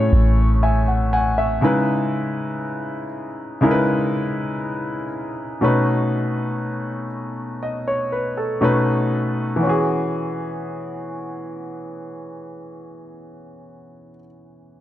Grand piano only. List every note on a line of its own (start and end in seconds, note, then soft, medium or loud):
0.00 1.05 A2 medium
0.00 1.05 A3 medium
0.00 1.05 C#4 medium
0.00 1.06 G#4 medium
0.00 1.06 C#5 medium
0.63 0.86 E5 medium
0.63 1.09 G#5 medium
0.88 1.11 F#5 medium
1.13 1.59 F#5 medium
1.13 1.36 G#5 medium
1.38 1.85 E5 medium
1.61 3.05 C#3 medium
1.61 3.05 G#3 medium
1.61 3.06 D#4 medium
1.61 3.06 E4 medium
1.61 3.06 B4 medium
3.61 5.05 C#3 medium
3.61 5.05 G#3 medium
3.61 5.05 D#4 medium
3.61 5.06 E4 medium
3.61 3.70 A#4 medium
3.71 5.10 B4 medium
5.61 7.05 B2 medium
5.61 7.05 A3 medium
5.61 7.05 C#4 medium
5.61 7.06 D#4 medium
5.61 7.06 B4 medium
7.63 7.86 D#5 medium
7.88 8.11 C#5 medium
8.12 8.36 B4 medium
8.37 8.85 A4 medium
8.61 9.42 B2 medium
8.61 9.42 A3 medium
8.61 9.42 C#4 medium
8.61 9.43 D#4 medium
8.61 9.43 B4 medium
9.56 14.11 E3 medium
9.56 14.14 B3 medium
9.63 14.17 C#4 medium
9.63 14.21 F#4 medium
9.69 14.24 G#4 medium